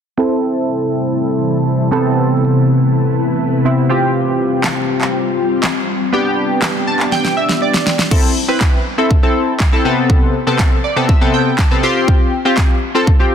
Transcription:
0.17 3.86 C3 medium
0.17 3.86 E3 medium
0.17 1.90 G3 medium
0.17 1.90 A3 medium
0.17 1.88 C4 medium
0.17 1.88 E4 medium
0.17 3.86 E4 medium
0.17 1.88 A4 medium
1.91 3.61 C3 medium
1.91 3.88 A3 medium
1.91 3.62 B3 medium
1.91 3.62 C4 medium
1.91 3.62 A4 medium
1.91 3.88 B4 medium
3.65 3.90 C3 medium
3.65 3.90 B3 medium
3.65 3.88 C4 medium
3.65 3.90 E4 medium
3.89 8.07 G3 medium
3.89 5.84 C4 medium
3.89 6.11 C4 medium
3.89 5.84 F4 medium
3.89 6.11 F4 medium
3.89 5.84 G4 medium
4.64 snare medium
4.64 clap loud
5.01 clap medium
5.64 snare medium
5.64 clap loud
6.12 8.07 B3 medium
6.12 8.09 B3 medium
6.12 8.07 D4 medium
6.12 8.09 D4 medium
6.12 8.08 G4 medium
6.62 snare medium
6.62 clap loud
6.87 7.10 A5 medium
7.00 clap medium
7.12 7.35 G5 medium
7.12 snare soft
7.25 snare soft
7.37 7.60 E5 medium
7.49 snare medium
7.62 8.08 D5 medium
7.74 snare medium
7.87 snare medium
7.99 snare medium
8.11 8.34 C4 medium
8.11 8.34 E4 medium
8.11 8.34 A4 medium
8.11 kick loud
8.11 crash medium
8.48 8.78 C4 medium
8.48 8.78 E4 medium
8.48 8.79 B4 medium
8.61 kick loud
8.61 snare medium
8.61 clap loud
8.98 9.13 C4 medium
8.98 9.13 E4 medium
8.98 9.13 A4 medium
9.11 kick loud
9.23 9.53 C4 medium
9.23 9.53 E4 medium
9.23 9.53 A4 medium
9.60 kick loud
9.60 snare medium
9.60 clap loud
9.72 9.84 C4 medium
9.72 9.85 E4 medium
9.72 9.84 A4 medium
9.85 10.34 C3 medium
9.85 10.34 B3 medium
9.85 10.35 C4 medium
9.85 10.35 A4 loud
10.10 kick loud
10.47 10.77 C3 medium
10.47 10.77 B3 medium
10.47 10.77 C4 medium
10.47 10.77 A4 loud
10.59 kick loud
10.59 snare medium
10.59 clap loud
10.84 11.07 D5 medium
10.96 11.11 C3 medium
10.96 11.11 B3 medium
10.96 11.11 C4 medium
10.96 11.11 A4 medium
11.09 11.32 E5 medium
11.09 kick loud
11.21 11.51 C3 medium
11.21 11.51 B3 medium
11.21 11.51 C4 medium
11.21 11.51 A4 medium
11.34 11.57 G5 medium
11.59 11.82 A5 medium
11.59 kick loud
11.59 snare medium
11.59 clap loud
11.71 11.83 C3 medium
11.71 11.83 B3 medium
11.71 11.82 C4 medium
11.71 11.83 A4 medium
11.83 12.33 C4 medium
11.83 12.33 F4 medium
11.83 12.33 G4 loud
11.83 12.06 C6 medium
12.08 kick loud
12.45 12.75 C4 medium
12.45 12.75 F4 medium
12.45 12.75 G4 medium
12.57 kick loud
12.57 snare medium
12.57 clap loud
12.95 13.10 C4 medium
12.95 13.10 F4 medium
12.95 13.10 A4 medium
13.07 kick loud
13.19 13.35 C4 medium
13.19 13.35 F4 medium
13.19 13.35 G4 medium

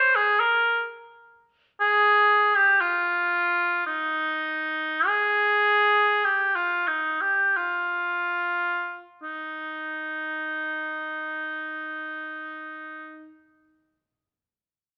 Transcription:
0.00 0.17 C5 medium
0.16 0.42 G#4 medium
0.40 0.86 A#4 medium
1.81 2.57 G#4 loud
2.55 2.82 G4 medium
2.81 3.86 F4 medium
3.87 5.08 D#4 medium
5.07 6.26 G#4 medium
6.25 6.57 G4 medium
6.56 6.89 F4 medium
6.87 7.22 D#4 medium
7.21 7.58 G4 medium
7.57 9.06 F4 medium
9.23 13.32 D#4 medium

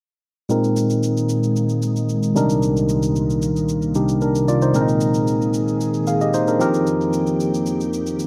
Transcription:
0.49 2.32 A#2 medium
0.49 2.34 A#2 medium
0.49 4.71 D#3 medium
0.49 2.32 G#3 medium
0.49 2.34 G#3 medium
0.49 2.32 C4 medium
0.49 2.33 D#4 medium
0.49 2.33 A#4 medium
0.49 shaker medium
0.64 shaker soft
0.76 shaker medium
0.90 shaker medium
1.03 shaker medium
1.17 shaker soft
1.29 shaker medium
1.44 shaker soft
1.56 shaker medium
1.69 shaker soft
1.82 shaker medium
1.96 shaker medium
2.09 shaker medium
2.23 shaker medium
2.35 4.73 C2 medium
2.35 3.92 C3 medium
2.35 4.73 C3 medium
2.35 3.92 G3 medium
2.35 8.27 A#3 medium
2.35 3.92 D4 medium
2.35 3.92 D#4 medium
2.35 3.93 A#4 medium
2.35 shaker medium
2.50 shaker medium
2.62 shaker medium
2.77 shaker soft
2.89 shaker medium
3.03 shaker medium
3.16 shaker medium
3.30 shaker soft
3.42 shaker medium
3.56 shaker soft
3.69 shaker medium
3.82 shaker soft
3.95 4.75 C3 medium
3.95 4.75 G3 soft
3.95 4.21 D4 soft
3.95 4.22 D#4 soft
3.95 4.22 G4 medium
3.95 shaker medium
4.09 shaker soft
4.21 4.47 D4 soft
4.21 4.47 A#4 medium
4.21 shaker medium
4.35 shaker medium
4.48 4.62 F4 medium
4.48 4.61 D5 medium
4.48 shaker medium
4.62 4.81 D#4 medium
4.62 4.87 C5 medium
4.62 shaker medium
4.74 6.56 A#2 medium
4.74 8.27 D#3 medium
4.74 6.57 G#3 medium
4.74 6.57 C4 medium
4.74 4.82 D4 medium
4.74 6.59 G#4 medium
4.74 6.05 A#4 medium
4.74 shaker medium
4.82 6.08 D#4 medium
4.89 shaker soft
5.01 shaker medium
5.14 shaker medium
5.28 shaker medium
5.42 shaker soft
5.54 shaker medium
5.68 shaker soft
5.81 shaker medium
5.94 shaker soft
6.07 6.21 G#4 medium
6.07 6.21 F5 medium
6.07 shaker medium
6.21 6.34 G4 medium
6.21 6.34 D#5 medium
6.21 shaker medium
6.34 6.48 D#4 medium
6.34 6.47 C5 medium
6.34 shaker medium
6.48 6.73 D4 medium
6.48 6.60 A#4 medium
6.48 shaker medium
6.59 8.27 F2 medium
6.59 8.27 F3 medium
6.59 8.27 C4 medium
6.59 8.27 D#4 medium
6.59 8.27 G4 medium
6.59 8.27 A#4 medium
6.59 shaker medium
6.74 shaker medium
6.87 shaker medium
7.01 shaker soft
7.13 shaker medium
7.27 shaker medium
7.40 shaker medium
7.54 shaker soft
7.66 shaker medium
7.81 shaker soft
7.93 shaker medium
8.06 shaker soft
8.19 shaker medium

